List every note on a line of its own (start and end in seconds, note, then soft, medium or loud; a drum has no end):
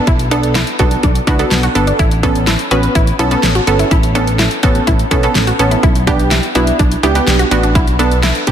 0.07 0.64 B1 loud
0.07 0.26 E4 medium
0.07 kick loud
0.07 closed hi-hat medium
0.19 closed hi-hat soft
0.31 0.49 B3 medium
0.31 0.49 D4 medium
0.31 0.50 D4 medium
0.31 0.49 A4 medium
0.31 closed hi-hat medium
0.43 closed hi-hat soft
0.55 0.74 E4 medium
0.55 snare loud
0.55 closed hi-hat medium
0.67 closed hi-hat medium
0.79 0.96 B1 loud
0.79 0.97 B3 medium
0.79 0.97 D4 medium
0.79 0.98 F#4 medium
0.79 0.97 A4 loud
0.79 kick medium
0.79 closed hi-hat medium
0.91 closed hi-hat medium
1.03 1.20 B1 loud
1.03 1.22 D4 medium
1.03 kick medium
1.03 closed hi-hat medium
1.15 closed hi-hat soft
1.27 1.44 C#2 medium
1.27 1.36 B3 medium
1.27 1.36 D4 medium
1.27 1.46 E4 medium
1.27 1.36 F#4 loud
1.27 kick medium
1.27 closed hi-hat medium
1.39 1.57 B3 medium
1.39 1.57 D4 medium
1.39 1.57 A4 medium
1.39 closed hi-hat medium
1.51 1.68 B1 loud
1.51 snare loud
1.51 closed hi-hat medium
1.63 1.82 F#4 medium
1.63 closed hi-hat medium
1.75 1.92 G1 medium
1.75 1.93 B3 medium
1.75 1.93 D4 medium
1.75 1.93 A4 medium
1.75 closed hi-hat medium
1.87 1.96 D4 medium
1.87 closed hi-hat soft
1.99 2.56 A1 loud
1.99 2.18 E4 medium
1.99 kick loud
1.99 closed hi-hat medium
2.11 closed hi-hat soft
2.23 2.41 B3 medium
2.23 2.41 C#4 medium
2.23 2.42 D4 medium
2.23 2.41 A4 medium
2.23 kick medium
2.23 closed hi-hat medium
2.35 closed hi-hat medium
2.47 2.66 E4 medium
2.47 snare loud
2.47 closed hi-hat medium
2.59 closed hi-hat medium
2.71 2.88 A1 medium
2.71 2.89 B3 medium
2.71 2.89 C#4 medium
2.71 2.90 F#4 medium
2.71 2.89 B4 loud
2.71 closed hi-hat medium
2.83 closed hi-hat medium
2.95 3.12 A1 loud
2.95 3.14 E4 medium
2.95 kick medium
2.95 closed hi-hat medium
3.07 closed hi-hat medium
3.19 3.36 B1 medium
3.19 3.28 B3 medium
3.19 3.28 C#4 medium
3.19 3.38 E4 medium
3.19 3.28 A4 medium
3.19 closed hi-hat medium
3.31 3.49 B3 medium
3.31 3.49 C#4 medium
3.31 3.49 A4 medium
3.31 closed hi-hat soft
3.43 3.60 A1 loud
3.43 snare loud
3.43 closed hi-hat medium
3.55 3.74 F#4 medium
3.55 closed hi-hat medium
3.67 3.84 G1 loud
3.67 3.85 B3 medium
3.67 3.85 C#4 medium
3.67 3.85 A4 loud
3.67 closed hi-hat medium
3.79 3.88 E4 medium
3.79 closed hi-hat medium
3.91 4.48 A1 loud
3.91 4.09 E4 medium
3.91 kick loud
3.91 closed hi-hat medium
4.03 closed hi-hat soft
4.15 4.33 B3 medium
4.15 4.33 C#4 medium
4.15 4.33 D4 medium
4.15 4.33 A4 medium
4.15 closed hi-hat medium
4.27 closed hi-hat medium
4.39 4.57 E4 medium
4.39 snare loud
4.39 closed hi-hat medium
4.51 closed hi-hat medium
4.63 4.80 A1 loud
4.63 4.81 B3 medium
4.63 4.81 C#4 medium
4.63 4.81 F#4 medium
4.63 4.81 A4 loud
4.63 kick medium
4.63 closed hi-hat medium
4.75 closed hi-hat medium
4.87 5.04 A1 loud
4.87 5.05 E4 medium
4.87 kick medium
4.87 closed hi-hat medium
4.99 closed hi-hat medium
5.11 5.28 B1 medium
5.11 5.20 B3 medium
5.11 5.20 C#4 medium
5.11 5.30 E4 medium
5.11 5.20 A4 medium
5.11 kick medium
5.11 closed hi-hat medium
5.23 5.41 B3 medium
5.23 5.41 C#4 medium
5.23 5.41 A4 medium
5.23 closed hi-hat medium
5.35 5.52 A1 loud
5.35 snare loud
5.35 closed hi-hat medium
5.47 5.66 F#4 medium
5.47 closed hi-hat medium
5.59 5.76 A1 medium
5.59 5.77 B3 medium
5.59 5.77 C#4 medium
5.59 5.77 A4 medium
5.59 closed hi-hat medium
5.71 5.80 E4 medium
5.71 closed hi-hat medium
5.83 6.40 B1 loud
5.83 6.02 E4 medium
5.83 kick loud
5.83 closed hi-hat medium
5.95 closed hi-hat soft
6.07 6.25 B3 medium
6.07 6.26 D4 medium
6.07 6.25 D4 medium
6.07 6.25 G4 medium
6.07 kick medium
6.07 closed hi-hat medium
6.19 closed hi-hat soft
6.31 6.50 E4 medium
6.31 snare loud
6.31 closed hi-hat medium
6.43 closed hi-hat medium
6.55 6.72 B1 medium
6.55 6.73 B3 medium
6.55 6.73 D4 medium
6.55 6.73 E4 loud
6.55 6.74 F#4 medium
6.55 closed hi-hat medium
6.67 closed hi-hat medium
6.79 6.96 B1 loud
6.79 6.98 D4 medium
6.79 kick medium
6.79 closed hi-hat medium
6.92 closed hi-hat medium
7.03 7.20 C#2 medium
7.03 7.12 B3 medium
7.03 7.12 D4 medium
7.03 7.22 E4 medium
7.03 7.12 G4 medium
7.03 closed hi-hat medium
7.15 7.33 B3 medium
7.15 7.33 D4 medium
7.15 7.33 G4 medium
7.15 closed hi-hat soft
7.27 7.44 B1 loud
7.27 snare loud
7.27 closed hi-hat medium
7.39 7.58 F#4 medium
7.39 closed hi-hat medium
7.51 7.77 A1 medium
7.51 7.69 B3 medium
7.51 7.69 D4 medium
7.51 7.69 F#4 loud
7.51 closed hi-hat medium
7.63 7.72 D4 medium
7.63 closed hi-hat medium
7.75 8.32 B1 loud
7.75 7.94 E4 medium
7.75 kick loud
7.75 closed hi-hat medium
7.88 closed hi-hat soft
7.99 8.17 B3 medium
7.99 8.17 D4 medium
7.99 8.18 D4 medium
7.99 8.17 A4 medium
7.99 closed hi-hat medium
8.12 closed hi-hat medium
8.23 8.42 E4 medium
8.23 snare loud
8.23 closed hi-hat medium
8.35 closed hi-hat medium
8.47 8.52 B1 medium
8.47 8.52 B3 medium
8.47 8.52 D4 medium
8.47 8.52 F#4 medium
8.47 8.52 G4 loud
8.47 kick medium
8.47 closed hi-hat medium